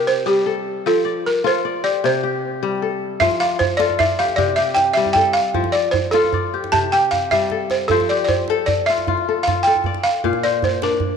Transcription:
Already playing: kora C3 F4 G4 A4 D5
0.07 balafon C5
0.26 kora G3, balafon G4
0.46 kora A4
0.86 kora F3, balafon A4
1.05 kora D5
1.26 balafon A#4
1.44 kora F4 A4, balafon C5
1.65 kora D5
1.84 kora G4, balafon D5
2.04 kora C3, balafon C5
2.23 kora G4
2.63 kora G3
2.82 kora A4
3.20 kora F3, balafon E5, djembe bass
3.31 djembe slap, djembe tone
3.40 kora D5, balafon F5
3.59 balafon C5, djembe bass
3.70 djembe slap
3.77 kora F4 A4, balafon D5, djembe slap
3.90 djembe slap, djembe tone
3.99 kora D5, balafon E5, djembe bass
4.10 djembe slap
4.19 kora G4, balafon F5, djembe slap
4.28 djembe slap
4.36 kora C3, balafon D5, djembe slap, djembe bass
4.48 djembe slap, djembe tone
4.56 kora G4, balafon E5, djembe slap
4.74 balafon G5, djembe slap
4.94 kora G3, balafon E5, djembe slap
5.06 djembe tone
5.13 kora A4, balafon G5, djembe bass
5.25 djembe slap
5.33 balafon F5
5.54 kora F3, djembe bass
5.64 djembe slap, djembe tone
5.72 balafon D5, kora D5
5.91 balafon C5, djembe bass
6.11 kora F4 A4, balafon A4, djembe slap
6.23 djembe tone
6.33 kora D5, djembe slap, djembe bass
6.43 djembe slap
6.53 kora G4, djembe slap
6.64 djembe slap
6.72 kora C3, balafon A5, djembe slap, djembe bass
6.83 djembe tone
6.92 kora G4, balafon G5
7.11 balafon F5, djembe bass
7.31 kora G3, balafon E5, djembe bass
7.50 kora A4, djembe slap
7.70 balafon C5, djembe slap
7.88 kora F3 C5, balafon A4, djembe bass
8.00 djembe slap, djembe tone
8.09 kora G4, balafon D5
8.24 balafon D5
8.28 balafon C5, djembe bass
8.48 kora A4, djembe slap
8.66 balafon D5, djembe slap, djembe bass
8.86 kora F4, balafon E5
8.98 djembe slap
9.07 kora F4, djembe bass
9.17 djembe tone
9.29 kora A4
9.43 balafon F5
9.48 kora F4, djembe slap, djembe bass
9.56 djembe slap
9.63 balafon G5
9.67 kora A4
9.75 djembe tone
9.84 kora D5, djembe slap, djembe bass
9.94 djembe slap
10.03 balafon F5
10.24 kora A#2 F5, djembe bass
10.33 djembe slap, djembe tone
10.43 kora C5, balafon D5
10.62 balafon C5, djembe bass
10.82 kora D4 D5, balafon A#4, djembe slap
10.91 djembe tone
11.00 djembe slap, djembe bass

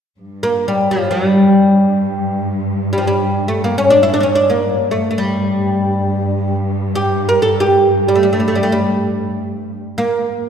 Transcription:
0.19 cello section G2
0.43 oud A#3
0.68 oud G3
0.91 oud F3
1.11 oud G3
2.93 oud G3
2.98 oud F3
3.07 oud G3
3.48 oud A3
3.64 oud A#3
3.78 oud C#4
3.90 oud D4
4.03 oud E4
4.14 oud D4
4.20 oud C#4 D4
4.35 oud D4
4.50 oud A#3
4.91 oud A3
4.97 cello section G2
5.11 oud A3
5.18 oud G3
6.95 oud G4
7.29 oud A#4
7.42 oud A4
7.60 oud G4
8.08 oud G3
8.15 oud A3
8.23 oud G3
8.33 oud A3
8.40 oud G3
8.48 oud A3
8.55 oud G3
8.63 oud A3
8.72 oud G3
9.98 oud A#3

